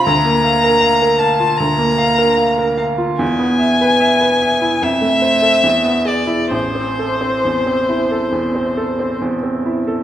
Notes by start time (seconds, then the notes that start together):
0.05 D2 A#5
0.25 A#3
0.44 F5
0.64 A#4
0.81 F5
1.02 A#4
1.19 F5 A5
1.40 F4
1.58 D2 A#5
1.78 A#3
1.98 F5
2.18 A#4
2.38 F5
2.59 A#4
2.78 F5
2.98 F4
3.19 E2 G#5
3.39 B3
3.59 E5
3.81 B4
4.00 E5
4.21 B4
4.42 E5
4.62 E4
4.82 F2 E5
5.01 A3
5.22 C5
5.42 A4
5.63 E2
5.85 B3
6.05 G#4 D5
6.27 E4
6.51 A1 C5
6.75 C4
6.99 A4
7.21 C4
7.45 E2
7.66 C4
7.89 E4
8.11 A4
8.32 E2
8.55 C4
8.77 A4
8.99 C4
9.21 E2
9.43 C4
9.66 E4
9.87 A4